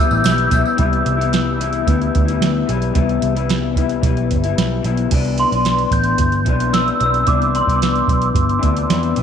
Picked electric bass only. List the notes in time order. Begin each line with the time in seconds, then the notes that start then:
0.11 A1
0.25 B1
0.52 B1
0.79 C2
1.06 C2
1.87 D2
2.16 D2
2.41 D2
2.69 B1
2.96 C2
3.22 C2
4.03 B1
4.31 G1
4.58 B1
4.84 B1
5.11 C2
5.52 B1
5.91 A1
6.18 G1
6.47 B1
7.01 B1
7.28 C2
7.68 C2
8.08 B1
8.35 G1
8.63 D2
8.90 E2
9.17 B1